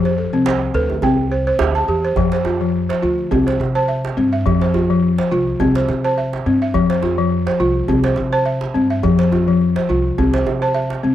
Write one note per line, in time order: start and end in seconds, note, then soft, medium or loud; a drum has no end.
0.00 0.25 F2 medium
0.00 0.17 F3 medium
0.05 0.45 C5 medium
0.05 djembe tone medium
0.18 0.62 A4 medium
0.33 0.67 C2 medium
0.33 0.62 C4 medium
0.46 0.90 C5 medium
0.46 djembe slap medium
0.62 djembe slap soft
0.74 0.98 D2 loud
0.74 1.03 A4 medium
0.74 1.19 B4 medium
0.90 djembe tone medium
1.02 1.50 C2 medium
1.02 1.32 C4 medium
1.02 1.47 G5 medium
1.02 djembe bass medium
1.18 djembe slap soft
1.32 1.46 C5 medium
1.47 1.76 C5 medium
1.59 1.86 D2 medium
1.59 djembe slap medium
1.59 djembe tone medium
1.75 2.17 A5 medium
1.75 djembe slap soft
1.88 2.14 E2 medium
1.88 2.17 G4 medium
1.88 djembe slap soft
2.03 2.32 C5 medium
2.03 djembe slap soft
2.16 2.88 F2 medium
2.16 2.46 F3 medium
2.16 djembe slap soft
2.16 djembe bass medium
2.32 2.75 C5 medium
2.32 djembe slap medium
2.45 2.90 F4 medium
2.45 djembe tone medium
2.61 2.90 F3 medium
2.74 djembe slap soft
2.89 3.31 C5 medium
2.89 djembe slap medium
3.02 3.27 D2 medium
3.02 3.31 F4 medium
3.18 djembe slap soft
3.31 3.55 C2 medium
3.31 3.60 C4 medium
3.31 djembe bass medium
3.47 3.74 C5 medium
3.47 djembe slap medium
3.60 4.07 C3 medium
3.60 djembe slap soft
3.60 djembe tone medium
3.75 4.04 C5 medium
3.75 4.17 A5 medium
3.88 4.31 E5 medium
4.05 djembe slap medium
4.17 4.41 G2 medium
4.17 4.46 C4 medium
4.33 4.61 E5 medium
4.46 5.17 F2 medium
4.46 4.74 F3 medium
4.46 djembe slap soft
4.46 djembe bass medium
4.61 5.03 C5 medium
4.61 djembe slap soft
4.74 5.19 F4 medium
4.74 djembe tone medium
4.90 5.19 F3 medium
5.03 djembe slap soft
5.18 5.60 C5 medium
5.18 djembe slap medium
5.31 5.55 C2 medium
5.31 5.60 F4 medium
5.47 djembe slap soft
5.60 5.84 C2 medium
5.60 5.89 C4 medium
5.60 djembe bass medium
5.75 6.03 C5 medium
5.75 djembe slap medium
5.88 6.36 C3 medium
5.88 djembe slap soft
5.88 djembe tone medium
6.05 6.33 C5 medium
6.05 6.46 A5 medium
6.18 6.61 E5 medium
6.33 djembe slap soft
6.46 6.70 G2 medium
6.46 6.75 C4 medium
6.62 6.90 E5 medium
6.74 7.45 F2 medium
6.74 7.03 F3 medium
6.74 djembe slap soft
6.74 djembe bass medium
6.90 7.32 C5 medium
6.90 djembe slap soft
7.02 7.47 F4 medium
7.02 djembe tone medium
7.18 7.47 F3 medium
7.31 djembe slap soft
7.47 7.89 C5 medium
7.47 djembe slap medium
7.60 7.84 C2 medium
7.60 7.89 F4 medium
7.75 djembe slap soft
7.88 8.13 C2 medium
7.88 8.17 C4 medium
7.88 djembe bass medium
8.04 8.31 C5 medium
8.04 djembe slap medium
8.16 8.64 C3 medium
8.16 djembe slap soft
8.16 djembe tone medium
8.33 8.62 C5 medium
8.33 8.74 A5 medium
8.46 8.89 E5 medium
8.61 djembe slap medium
8.74 8.99 G2 medium
8.74 9.03 C4 medium
8.90 9.19 E5 medium
9.03 9.74 F2 medium
9.03 9.32 F3 medium
9.03 djembe bass medium
9.19 9.60 C5 medium
9.19 djembe slap soft
9.32 9.76 F4 medium
9.32 djembe slap soft
9.32 djembe tone medium
9.48 9.76 F3 medium
9.61 djembe slap soft
9.76 10.18 C5 medium
9.76 djembe slap medium
9.89 10.13 C2 medium
9.89 10.18 F4 medium
10.18 10.41 C2 medium
10.18 10.46 C4 medium
10.18 djembe bass medium
10.34 10.61 C5 medium
10.34 djembe slap medium
10.46 10.93 C3 medium
10.46 djembe tone medium
10.62 10.90 C5 medium
10.62 11.03 A5 medium
10.62 djembe slap soft
10.74 11.15 E5 medium
10.90 djembe slap soft
11.03 11.15 C2 medium
11.03 11.15 C4 medium